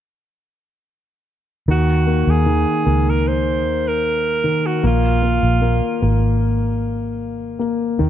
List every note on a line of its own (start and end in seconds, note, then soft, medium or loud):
1.68 2.23 D#2 medium
1.68 2.45 D#3 medium
1.68 2.32 F#4 medium
2.07 2.84 A#3 soft
2.27 2.64 D#2 medium
2.27 3.11 G#4 medium
2.46 4.00 D#3 soft
2.85 3.66 C#2 medium
2.85 4.40 A#3 soft
3.09 3.30 A#4 medium
3.28 3.90 C5 medium
3.66 4.80 D#2 medium
3.88 4.68 A#4 medium
4.44 4.82 D#3 soft
4.66 4.85 F#4 medium
4.83 5.39 A#1 medium
4.83 5.21 A#3 medium
4.83 6.39 F4 medium
5.23 5.60 A#3 soft
5.43 5.80 A#1 medium
5.62 6.01 A#3 soft
6.02 7.96 G#1 medium
6.02 7.56 A#3 soft
7.59 7.98 A#3 soft
7.99 8.10 D#2 medium
7.99 8.10 D#3 medium